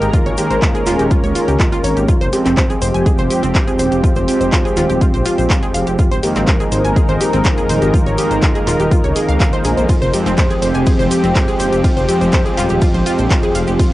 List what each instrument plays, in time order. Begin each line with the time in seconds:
Already playing: analog polysynth D#3 G#3 A#3, analog synth pad G#3 D#4 A#4
0.02 detuned saw bass G#1, synth pluck G4, closed hi-hat, shaker
0.13 analog synth pad C#4, synth pluck F4, kick, closed hi-hat, shaker
0.26 detuned saw bass G#1, synth pluck C#5, closed hi-hat, shaker
0.37 analog polysynth D#3 G#3 A#3, synth pluck G4, open hi-hat, shaker
0.51 detuned saw bass G#1, synth pluck C5, closed hi-hat, shaker
0.62 synth pluck F4, kick, clap, closed hi-hat, shaker
0.75 synth pluck G#4, closed hi-hat, shaker
0.86 detuned saw bass D#1, synth pluck F4, clap, open hi-hat, shaker
0.99 detuned saw bass D#1, synth pluck G4, closed hi-hat, shaker
1.11 synth pluck F4, kick, closed hi-hat, shaker
1.24 detuned saw bass C#2, synth pluck C#5, closed hi-hat, shaker
1.35 synth pluck F4, open hi-hat, shaker
1.48 detuned saw bass C#2, synth pluck G4, closed hi-hat, shaker
1.60 synth pluck F4, kick, clap, closed hi-hat, shaker
1.72 synth pluck F4, closed hi-hat, shaker
1.84 detuned saw bass G#1, synth pluck C#5, open hi-hat, shaker
1.97 detuned saw bass G#1, synth pluck G4, closed hi-hat, shaker
2.08 synth drone F2, analog synth pad F3 C4 G4, synth pluck F4, kick, closed hi-hat, shaker
2.21 detuned saw bass F1, synth pluck C5, closed hi-hat, shaker
2.33 analog polysynth F3 G#3 C4, synth pluck G4, open hi-hat, shaker
2.46 detuned saw bass F1, synth pluck C4, clap, closed hi-hat, shaker
2.57 synth pluck C5, kick, clap, closed hi-hat, shaker
2.70 synth pluck G#4, closed hi-hat, shaker
2.82 detuned saw bass F1, synth pluck C5, open hi-hat, shaker
2.94 detuned saw bass F1, synth pluck G#5, closed hi-hat, shaker
3.06 synth pluck G#4, kick, closed hi-hat, shaker
3.18 detuned saw bass F1, synth pluck C5, closed hi-hat, shaker
3.30 synth pluck G4, open hi-hat, shaker
3.43 detuned saw bass F1, synth pluck C4, closed hi-hat, shaker
3.55 synth pluck C4, kick, clap, closed hi-hat, shaker
3.68 synth pluck G#4, closed hi-hat, shaker
3.79 detuned saw bass D#1, synth pluck C5, open hi-hat, shaker
3.92 detuned saw bass F1, synth pluck G4, closed hi-hat, shaker
4.04 synth pluck F4, kick, closed hi-hat, shaker
4.16 detuned saw bass F1, synth pluck C5, closed hi-hat, shaker
4.28 analog polysynth F3 G#3 C4, synth pluck G4, open hi-hat, shaker
4.41 detuned saw bass F1, synth pluck C5, closed hi-hat, shaker
4.52 synth pluck F4, kick, clap, closed hi-hat, shaker
4.65 synth pluck G#4, closed hi-hat, shaker
4.77 detuned saw bass D#1, synth pluck F4, clap, open hi-hat, shaker
4.89 detuned saw bass D#1, synth pluck G4, closed hi-hat, shaker
5.01 synth pluck F4, kick, closed hi-hat, shaker
5.14 detuned saw bass A#1, synth pluck C5, closed hi-hat, shaker
5.25 synth pluck F4, open hi-hat, shaker
5.38 detuned saw bass A#1, synth pluck C5, closed hi-hat, shaker
5.50 synth pluck F4, kick, clap, closed hi-hat, shaker
5.63 synth pluck G#4, closed hi-hat, shaker
5.74 detuned saw bass F1, synth pluck F5, open hi-hat, shaker
5.87 detuned saw bass F1, synth pluck G4, closed hi-hat, shaker
5.99 analog synth pad G#3 D#4 A#4, synth pluck F4, kick, closed hi-hat, shaker
6.11 detuned saw bass G#1, synth pluck C5, closed hi-hat, shaker
6.23 analog polysynth D#3 G#3 A#3, synth pluck G4, open hi-hat, shaker
6.35 detuned saw bass G#1, synth pluck C4, clap, closed hi-hat, shaker
6.47 synth pluck C5, kick, clap, closed hi-hat, shaker
6.60 synth pluck G#4, closed hi-hat, shaker
6.72 detuned saw bass G#1, synth pluck C5, open hi-hat, shaker
6.85 detuned saw bass G#1, synth pluck G#5, closed hi-hat, shaker
6.96 synth pluck G#4, kick, closed hi-hat, shaker
7.08 detuned saw bass G#1, synth pluck C5, closed hi-hat, shaker
7.21 synth pluck G4, open hi-hat, shaker
7.33 detuned saw bass G#1, synth pluck C4, closed hi-hat, shaker
7.44 synth pluck C4, kick, clap, closed hi-hat, shaker
7.58 synth pluck G#4, closed hi-hat, shaker
7.69 detuned saw bass D#1, synth pluck C5, open hi-hat, shaker
7.82 detuned saw bass G#1, synth pluck G4, closed hi-hat, shaker
7.94 synth pluck F4, kick, closed hi-hat, shaker
8.06 detuned saw bass G#1, synth pluck C#5, closed hi-hat, shaker
8.18 analog polysynth D#3 G#3 A#3, synth pluck G4, open hi-hat, shaker
8.31 detuned saw bass G#1, synth pluck C5, closed hi-hat, shaker
8.42 synth pluck F4, kick, clap, closed hi-hat, shaker
8.55 synth pluck G#4, closed hi-hat, shaker
8.67 detuned saw bass D#1, synth pluck F4, clap, open hi-hat, shaker
8.80 detuned saw bass D#1, synth pluck G4, closed hi-hat, shaker
8.91 synth pluck F4, kick, closed hi-hat, shaker
9.04 detuned saw bass C#2, synth pluck C#5, closed hi-hat, shaker
9.16 synth pluck G#4, open hi-hat, shaker
9.29 detuned saw bass C#2, synth pluck F5, closed hi-hat, shaker
9.40 synth pluck F5, kick, clap, closed hi-hat, shaker
9.53 synth pluck C5, closed hi-hat, shaker
9.64 detuned saw bass A#1, synth pluck G#4, open hi-hat, shaker
9.77 detuned saw bass A#1, synth pluck C5, closed hi-hat, shaker
9.89 analog synth pad F3 C4 G4, synth pluck F4, kick, closed hi-hat, ride, shaker
10.02 detuned saw bass F1, synth pluck C5, closed hi-hat, shaker
10.13 analog polysynth F3 G#3 C4, synth pluck G4, open hi-hat, shaker
10.26 detuned saw bass F1, synth pluck C4, clap, closed hi-hat, shaker
10.37 synth pluck C5, kick, clap, closed hi-hat, ride, shaker
10.50 synth pluck G#4, closed hi-hat, shaker
10.62 detuned saw bass F1, synth pluck C5, open hi-hat, shaker
10.74 detuned saw bass F1, synth pluck G#5, closed hi-hat, shaker
10.86 synth pluck G#4, kick, closed hi-hat, ride, shaker
10.99 detuned saw bass F1, synth pluck C5, closed hi-hat, shaker
11.11 synth pluck G4, open hi-hat, shaker
11.24 detuned saw bass F1, synth pluck C4, closed hi-hat, shaker
11.35 synth pluck C4, kick, clap, closed hi-hat, ride, shaker
11.48 synth pluck G#4, closed hi-hat, shaker
11.60 detuned saw bass D#1, synth pluck C5, open hi-hat, shaker
11.72 detuned saw bass F1, synth pluck G4, closed hi-hat, shaker
11.84 synth pluck F4, kick, closed hi-hat, ride, shaker
11.97 detuned saw bass F1, synth pluck C5, closed hi-hat, shaker
12.09 analog polysynth F3 G#3 C4, synth pluck G4, open hi-hat, shaker
12.21 detuned saw bass F1, synth pluck C5, closed hi-hat, shaker
12.32 synth pluck C5, kick, clap, closed hi-hat, ride, shaker
12.46 synth pluck G#4, closed hi-hat, shaker
12.57 detuned saw bass D#1, synth pluck F4, clap, open hi-hat, shaker
12.69 detuned saw bass D#1, synth pluck G4, closed hi-hat, shaker
12.81 synth pluck F4, kick, closed hi-hat, ride, shaker
12.94 detuned saw bass A#1, synth pluck C5, closed hi-hat, shaker
13.06 synth pluck F4, open hi-hat, shaker
13.19 detuned saw bass A#1, synth pluck C5, closed hi-hat, shaker
13.31 synth pluck F4, kick, clap, closed hi-hat, ride, shaker
13.43 synth pluck G#4, closed hi-hat, shaker
13.55 detuned saw bass F1, synth pluck F5, open hi-hat, shaker
13.67 detuned saw bass F1, synth pluck G4, closed hi-hat, shaker
13.79 analog synth pad G#3 D#4 A#4, synth pluck F4, kick, closed hi-hat, ride, shaker